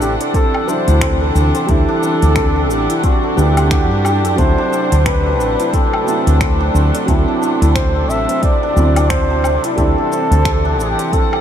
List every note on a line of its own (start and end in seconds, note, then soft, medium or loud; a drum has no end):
0.00 0.16 A1 medium
0.00 4.37 C3 medium
0.00 4.39 E3 medium
0.00 0.63 G3 loud
0.00 0.34 C4 medium
0.00 0.54 D4 loud
0.00 0.65 D4 medium
0.00 11.41 D4 medium
0.00 0.65 E4 loud
0.00 0.87 E4 medium
0.00 0.16 G4 medium
0.00 1.21 A4 medium
0.00 1.55 C5 medium
0.00 0.20 D5 medium
0.00 9.78 F#5 medium
0.00 shaker medium
0.21 2.22 D5 medium
0.21 closed hi-hat medium
0.21 shaker soft
0.34 1.01 C4 loud
0.34 0.70 A4 loud
0.34 kick loud
0.34 closed hi-hat soft
0.34 shaker soft
0.54 0.67 D4 medium
0.54 low woodblock medium
0.65 1.65 F#3 medium
0.65 1.68 D4 medium
0.65 1.66 D4 medium
0.65 1.65 C5 medium
0.65 1.36 C5 loud
0.65 shaker medium
0.70 1.67 E4 medium
0.88 1.30 D2 medium
0.88 2.89 E4 medium
0.88 closed hi-hat medium
0.88 shaker soft
1.01 1.34 C4 loud
1.01 finger snap loud
1.01 kick loud
1.01 closed hi-hat soft
1.01 shaker soft
1.21 3.23 A4 medium
1.35 1.51 D2 medium
1.35 2.02 C4 medium
1.35 shaker medium
1.55 4.19 C5 medium
1.55 closed hi-hat medium
1.55 shaker soft
1.66 1.84 D2 loud
1.66 3.33 G3 loud
1.66 1.88 D4 medium
1.66 3.34 D4 medium
1.66 2.72 A4 loud
1.66 kick loud
1.66 closed hi-hat soft
1.66 shaker soft
1.71 3.35 E4 loud
1.88 2.55 D4 loud
2.02 2.35 C4 medium
2.02 shaker medium
2.22 2.70 D2 medium
2.22 4.68 D5 medium
2.22 closed hi-hat medium
2.22 shaker soft
2.36 3.03 C4 medium
2.36 finger snap medium
2.36 kick loud
2.36 closed hi-hat soft
2.36 shaker soft
2.56 2.69 D4 medium
2.70 2.85 A1 medium
2.70 3.37 D4 medium
2.70 3.05 G4 medium
2.70 shaker medium
2.90 5.59 E4 medium
2.90 closed hi-hat medium
2.90 shaker soft
3.04 3.57 C4 loud
3.04 3.39 F#4 medium
3.04 kick loud
3.04 closed hi-hat soft
3.04 shaker soft
3.23 4.24 A4 medium
3.35 3.91 D2 medium
3.35 4.34 G3 medium
3.35 3.91 D4 loud
3.35 4.35 D4 medium
3.35 4.40 G4 loud
3.35 4.35 B4 medium
3.35 shaker medium
3.39 4.36 E4 medium
3.57 4.72 C4 medium
3.57 closed hi-hat medium
3.57 low woodblock medium
3.57 shaker soft
3.71 6.96 F#4 medium
3.71 finger snap loud
3.71 kick loud
3.71 closed hi-hat soft
3.71 shaker soft
3.91 4.25 G2 loud
3.91 4.04 D4 medium
4.05 4.38 D4 medium
4.05 low woodblock medium
4.05 shaker medium
4.25 4.36 F#2 medium
4.25 5.93 A4 medium
4.25 closed hi-hat medium
4.25 shaker soft
4.36 4.54 D2 loud
4.36 11.41 C3 medium
4.36 6.02 F#3 loud
4.36 6.03 C4 medium
4.36 4.58 D4 medium
4.36 6.04 E4 loud
4.36 5.07 C5 loud
4.36 11.41 A5 medium
4.36 kick loud
4.36 closed hi-hat soft
4.36 shaker soft
4.58 9.78 A3 medium
4.58 5.26 D4 loud
4.63 9.78 F#3 medium
4.72 5.05 C4 medium
4.72 shaker medium
4.92 5.40 D2 medium
4.92 6.94 D5 medium
4.92 closed hi-hat medium
4.92 shaker soft
5.05 5.73 C4 loud
5.05 5.72 B4 loud
5.05 finger snap medium
5.05 kick loud
5.05 closed hi-hat soft
5.05 shaker soft
5.26 5.39 D4 medium
5.40 5.55 A1 medium
5.40 6.40 D4 medium
5.40 shaker medium
5.60 7.61 E4 medium
5.60 closed hi-hat medium
5.60 shaker soft
5.73 6.06 C4 loud
5.73 6.70 A4 loud
5.73 kick loud
5.73 closed hi-hat soft
5.73 shaker soft
5.93 7.95 A4 medium
5.93 low woodblock medium
6.04 7.04 F#3 medium
6.04 7.05 C4 medium
6.04 6.74 C4 medium
6.04 7.06 E4 medium
6.04 shaker medium
6.27 6.69 D2 medium
6.27 8.29 C5 medium
6.27 closed hi-hat medium
6.27 shaker soft
6.40 6.60 D4 medium
6.40 finger snap loud
6.40 kick loud
6.40 closed hi-hat soft
6.40 shaker soft
6.60 7.28 D4 loud
6.74 6.90 D2 medium
6.74 7.07 C4 medium
6.74 shaker medium
6.94 8.96 D5 medium
6.94 closed hi-hat medium
6.94 shaker soft
7.06 7.24 D2 medium
7.06 8.72 F#3 loud
7.06 8.73 C4 medium
7.06 7.75 C4 medium
7.06 8.74 E4 loud
7.06 kick loud
7.06 closed hi-hat soft
7.06 shaker soft
7.28 7.41 D4 medium
7.42 8.42 D4 medium
7.42 shaker medium
7.62 8.09 D2 medium
7.62 9.64 E4 medium
7.62 closed hi-hat medium
7.62 shaker soft
7.75 8.09 C4 medium
7.75 8.11 C5 loud
7.75 finger snap medium
7.75 kick loud
7.75 closed hi-hat soft
7.75 shaker soft
7.95 9.98 A4 medium
8.09 8.25 A1 loud
8.09 8.76 C4 medium
8.09 8.44 E5 loud
8.09 shaker medium
8.29 10.31 C5 medium
8.29 closed hi-hat medium
8.29 shaker soft
8.42 8.63 D4 medium
8.42 9.11 D5 loud
8.42 kick loud
8.42 closed hi-hat soft
8.42 shaker soft
8.63 9.30 D4 loud
8.74 9.57 D2 loud
8.74 9.73 F#3 medium
8.74 9.74 C4 medium
8.74 9.10 C4 medium
8.74 9.75 E4 medium
8.74 shaker medium
8.96 10.98 D5 medium
8.96 closed hi-hat medium
8.96 low woodblock medium
8.96 shaker soft
9.10 9.77 C4 loud
9.10 9.64 C5 loud
9.10 finger snap loud
9.10 kick loud
9.10 closed hi-hat soft
9.10 shaker soft
9.30 9.44 D4 medium
9.44 10.45 D4 medium
9.44 low woodblock medium
9.44 shaker medium
9.64 11.41 E4 medium
9.64 closed hi-hat medium
9.64 shaker soft
9.76 9.93 D2 loud
9.76 11.41 G3 medium
9.76 10.11 C4 loud
9.76 11.41 D4 medium
9.76 11.41 E4 loud
9.76 10.80 A4 loud
9.76 kick loud
9.76 closed hi-hat soft
9.76 shaker soft
9.88 11.41 E3 medium
9.98 11.41 A4 medium
10.12 10.78 C4 medium
10.12 shaker medium
10.31 10.79 D2 loud
10.31 11.41 C5 medium
10.31 closed hi-hat medium
10.31 shaker soft
10.41 10.64 D4 medium
10.41 11.41 F#5 medium
10.41 finger snap medium
10.41 kick loud
10.41 closed hi-hat soft
10.46 shaker soft
10.65 11.32 D4 loud
10.78 10.94 A1 medium
10.78 11.12 C4 medium
10.78 11.14 G4 loud
10.78 shaker medium
10.99 11.41 D5 medium
10.99 closed hi-hat medium
10.99 shaker soft
11.13 11.41 C4 loud
11.13 11.41 A4 loud
11.13 kick loud
11.13 closed hi-hat soft
11.13 shaker soft
11.33 11.41 D4 medium
11.33 low woodblock medium